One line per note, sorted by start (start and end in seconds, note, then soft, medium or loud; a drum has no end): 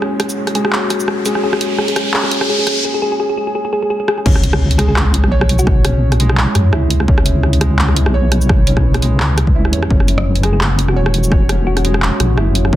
0.00 0.55 G#3 medium
0.00 2.81 A#3 medium
0.00 0.02 C#4 medium
0.00 2.80 C#4 medium
0.00 0.19 C#4 medium
0.00 2.81 F#4 medium
0.00 2.80 C#5 medium
0.00 cross-stick medium
0.00 riser medium
0.20 cross-stick medium
0.20 closed hi-hat medium
0.29 shaker medium
0.47 cross-stick soft
0.47 closed hi-hat soft
0.55 0.71 G#3 medium
0.55 0.61 G#4 medium
0.55 closed hi-hat medium
0.65 0.70 G#4 medium
0.65 cross-stick medium
0.73 0.90 C#4 medium
0.73 clap loud
0.90 cross-stick medium
0.90 closed hi-hat medium
0.90 shaker soft
1.00 shaker medium
1.08 cross-stick medium
1.26 1.42 G#3 medium
1.26 1.32 G#4 medium
1.26 closed hi-hat medium
1.26 shaker medium
1.35 1.40 G#4 medium
1.35 cross-stick medium
1.43 1.60 C#4 medium
1.43 1.50 G#4 medium
1.53 1.58 G#4 medium
1.53 cross-stick medium
1.61 closed hi-hat medium
1.78 1.95 C#4 medium
1.78 1.85 G#4 medium
1.78 cross-stick medium
1.88 1.93 G#4 medium
1.88 closed hi-hat soft
1.96 cross-stick medium
1.96 closed hi-hat medium
2.14 2.31 C#4 medium
2.14 2.20 G#4 medium
2.14 clap loud
2.24 2.29 G#4 medium
2.24 cross-stick medium
2.31 closed hi-hat medium
2.41 cross-stick medium
2.49 2.66 C#4 medium
2.49 2.56 G#4 loud
2.59 2.64 G#4 medium
2.67 cross-stick medium
2.67 closed hi-hat medium
2.85 2.91 G#4 medium
2.94 2.99 G#4 medium
3.02 3.08 G#4 medium
3.12 3.17 G#4 medium
3.20 3.26 G#4 medium
3.29 3.35 G#4 medium
3.37 3.44 G#4 medium
3.47 3.52 G#4 medium
3.55 3.61 G#4 loud
3.65 3.70 G#4 medium
3.73 3.79 G#4 medium
3.82 3.88 G#4 medium
3.90 3.97 G#4 loud
4.00 4.05 G#4 medium
4.08 4.14 G#4 loud
4.08 cross-stick medium
4.18 4.23 G#4 medium
4.26 5.25 C#2 loud
4.26 9.86 G#3 medium
4.26 4.43 C#4 medium
4.26 12.76 C#4 medium
4.26 9.86 E4 medium
4.26 7.05 C#5 medium
4.26 kick loud
4.26 crash loud
4.26 impact medium
4.36 cross-stick medium
4.44 closed hi-hat medium
4.44 shaker soft
4.53 cross-stick medium
4.71 closed hi-hat soft
4.78 5.30 G#3 medium
4.78 4.85 G#4 medium
4.78 cross-stick medium
4.78 closed hi-hat medium
4.88 4.93 G#4 medium
4.96 cross-stick medium
4.96 clap loud
5.14 closed hi-hat medium
5.24 6.46 B1 loud
5.24 cross-stick medium
5.32 5.42 C#5 loud
5.41 cross-stick medium
5.49 closed hi-hat medium
5.59 5.84 F#4 medium
5.59 shaker medium
5.67 kick loud
5.67 cross-stick medium
5.84 6.01 C#4 medium
5.84 cross-stick medium
5.84 closed hi-hat medium
6.12 cross-stick medium
6.12 closed hi-hat soft
6.20 6.71 G#3 medium
6.20 closed hi-hat medium
6.29 cross-stick medium
6.37 clap loud
6.55 6.74 F#2 medium
6.55 cross-stick medium
6.55 closed hi-hat medium
6.73 7.07 C#2 loud
6.73 6.84 E4 medium
6.73 cross-stick medium
6.90 closed hi-hat medium
7.00 cross-stick medium
7.08 8.08 C#2 loud
7.08 7.25 C#4 medium
7.08 9.88 B4 medium
7.08 kick loud
7.18 cross-stick medium
7.26 closed hi-hat medium
7.26 shaker soft
7.43 cross-stick medium
7.53 closed hi-hat soft
7.61 8.12 G#3 medium
7.61 cross-stick medium
7.61 closed hi-hat medium
7.79 clap loud
7.89 cross-stick soft
7.96 closed hi-hat medium
8.06 9.21 B1 medium
8.06 cross-stick medium
8.14 8.25 C#5 loud
8.32 cross-stick medium
8.32 closed hi-hat medium
8.41 shaker medium
8.49 kick loud
8.49 cross-stick medium
8.67 8.84 C#4 medium
8.67 closed hi-hat medium
8.77 kick medium
8.77 cross-stick medium
8.94 cross-stick medium
8.94 closed hi-hat soft
9.02 9.54 G#3 medium
9.02 closed hi-hat medium
9.20 9.74 C#2 loud
9.20 cross-stick medium
9.20 clap loud
9.38 cross-stick medium
9.38 closed hi-hat medium
9.47 kick medium
9.55 9.71 E4 medium
9.65 cross-stick soft
9.73 9.89 E2 medium
9.73 9.89 C#5 medium
9.73 closed hi-hat medium
9.83 cross-stick medium
9.90 10.90 F#1 loud
9.90 12.76 A#3 medium
9.90 10.07 C#4 medium
9.90 12.76 F#4 medium
9.90 12.76 C#5 medium
9.90 kick loud
10.00 cross-stick soft
10.08 closed hi-hat medium
10.08 shaker soft
10.18 cross-stick medium
10.35 closed hi-hat soft
10.43 10.95 G#3 medium
10.43 10.50 G#4 medium
10.43 cross-stick soft
10.43 closed hi-hat medium
10.53 10.58 G#4 medium
10.61 cross-stick medium
10.61 clap loud
10.79 closed hi-hat medium
10.88 12.11 E1 medium
10.88 11.14 F#4 medium
10.88 cross-stick soft
10.96 11.07 C#5 loud
11.06 cross-stick medium
11.14 closed hi-hat medium
11.24 shaker medium
11.32 11.48 C#5 medium
11.32 kick loud
11.32 cross-stick medium
11.49 11.66 C#4 medium
11.49 cross-stick medium
11.49 closed hi-hat medium
11.67 11.94 F#4 loud
11.77 cross-stick medium
11.77 closed hi-hat soft
11.84 12.36 G#3 medium
11.84 closed hi-hat medium
11.94 cross-stick medium
12.02 clap loud
12.20 12.39 A#1 medium
12.20 cross-stick medium
12.20 closed hi-hat medium
12.37 12.72 F#1 loud
12.37 12.48 E4 medium
12.37 cross-stick medium
12.55 closed hi-hat medium
12.65 cross-stick medium
12.73 12.76 F#1 loud
12.73 12.76 C#4 medium
12.73 kick loud